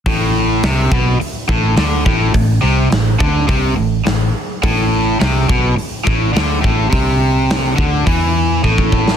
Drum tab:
HH |o---o---o---o---|o---o---o---o---|o---o---o---o---|o---o---o-------|
SD |----o-------o---|----o-------o---|----o-------o---|----o----------o|
BD |o-----o---o---o-|o-----o-o-------|o-----o---o---o-|o-----o-o---ooo-|